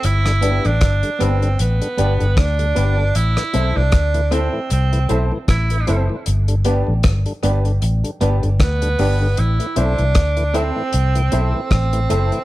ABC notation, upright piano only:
X:1
M:4/4
L:1/16
Q:"Swing 16ths" 1/4=77
K:G
V:1 name="Upright piano"
z2 [B,DGB] z3 [B,DGB] z3 [B,DGB] z3 [B,DGB] [GB] | z2 [CEAc] z3 [CEAc] z3 [CEAc] z3 [CEAc] [Ac] | z2 [B,DGB] z3 [B,DGB] z3 [B,DGB] z3 [B,DGB] [GB] | z2 [CEAc] z3 [CEAc] z3 [CEAc] z3 [CEAc] [Ac] |]